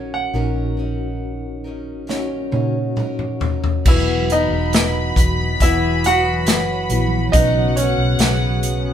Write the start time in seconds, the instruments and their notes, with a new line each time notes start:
Already playing: fingered electric bass A#1, steel-string acoustic guitar F#3 C#4 D#4 A#4, tine electric piano C#4 D#4 F#4 A#4 C#5, grand piano C#5
0.14 grand piano F#5
0.34 fingered electric bass A#1, steel-string acoustic guitar A#2 D#3 F#3 C#4 D#4 A#4, tine electric piano A#2 C#4 D#4 F#4 A#4
0.77 steel-string acoustic guitar F#3 C#4 D#4 A#4
1.64 steel-string acoustic guitar F#3 C#4 D#4 A#4
2.07 steel-string acoustic guitar A#2 D#3 F#3 C#4 D#4 A#4, tine electric piano C#4 D#4 F#4 C#5, snare
2.52 fingered electric bass A#2, steel-string acoustic guitar F#3 C#4 D#4 A#4, tine electric piano C#4 D#4 F#4 C#5, high tom
2.96 steel-string acoustic guitar F#3 C#4 D#4 A#4, mid tom
3.19 mid tom
3.40 steel-string acoustic guitar F#3 C#4 D#4 A#4, floor tom
3.64 floor tom
3.85 fingered electric bass E1, steel-string acoustic guitar E3 F#3 B3 F#4 B4, analog synth pad E3 F#3 B3, tine electric piano E3 F#3 B3 F#4, grand piano E4 E5, violin section B5, kick, crash
4.29 steel-string acoustic guitar B3 F#4 B4, grand piano D#4 D#5, closed hi-hat
4.51 fingered electric bass E1
4.72 steel-string acoustic guitar F#3 B3 F#4 B4, snare, closed hi-hat
5.16 fingered electric bass E1, steel-string acoustic guitar B3 F#4 B4, kick, closed hi-hat
5.60 fingered electric bass E1, steel-string acoustic guitar E3 F#3 B3 F#4 B4, grand piano E4 E5, kick, closed hi-hat
6.04 grand piano F#4 F#5, closed hi-hat
6.46 fingered electric bass F#1, steel-string acoustic guitar F#3 B3 F#4 B4, snare, closed hi-hat
6.89 fingered electric bass A#1, tine electric piano F#3 B3 E4 F#4, steel-string acoustic guitar B3 F#4 B4, closed hi-hat
7.32 fingered electric bass B1, tine electric piano B2 F#3 B3 C#4 F#4, analog synth pad C#3 B3, steel-string acoustic guitar B3 C#4 F#4 B4, grand piano D#4 D#5, violin section F#5, kick, closed hi-hat
7.76 grand piano C#4 C#5, steel-string acoustic guitar C#4 F#4 B4, closed hi-hat
7.98 fingered electric bass B1
8.19 fingered electric bass B1, steel-string acoustic guitar B3 C#4 F#4, snare, closed hi-hat
8.23 steel-string acoustic guitar B4
8.63 closed hi-hat